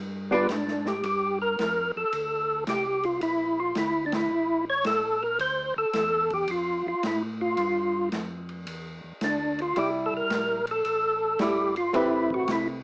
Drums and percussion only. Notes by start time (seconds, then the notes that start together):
0.48 snare, hi-hat pedal, ride
0.67 snare
0.85 snare
1.03 ride
1.58 snare, hi-hat pedal, ride
2.12 ride
2.67 snare, hi-hat pedal, ride
3.03 ride
3.21 ride
3.75 snare, hi-hat pedal, ride
4.12 snare, ride
4.84 snare, hi-hat pedal, ride
5.39 ride
5.93 snare, hi-hat pedal, ride
6.30 kick, ride
6.47 ride
7.03 snare, hi-hat pedal, ride
7.57 ride
8.12 snare, hi-hat pedal, ride
8.49 ride
8.67 ride
9.21 snare, hi-hat pedal, ride
9.59 ride
9.76 ride
10.30 snare, hi-hat pedal, ride
10.67 ride
10.84 ride
11.39 snare, hi-hat pedal, ride
11.76 ride
11.94 ride
12.30 kick
12.48 snare, hi-hat pedal, ride